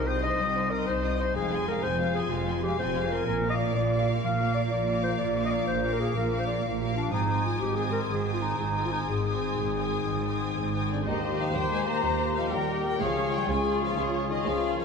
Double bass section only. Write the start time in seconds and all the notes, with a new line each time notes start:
Already playing: C2
0.39 C2
0.86 C2
1.35 F1
1.83 F1
2.31 F1
2.79 F1
3.27 A#1
3.75 A#1
4.24 A#1
4.71 A#1
5.20 A#1
5.67 A#1
6.16 A#1
6.64 A#1
7.12 G#1
7.60 G#1
8.08 G#1
8.58 G#1
9.08 G#1
9.59 G#1
10.08 G#1
10.57 G#1
11.06 D#2
11.55 D#2
12.03 D#2
12.51 D#2
13.00 C#2
13.48 C#2
13.97 C#2
14.45 C#2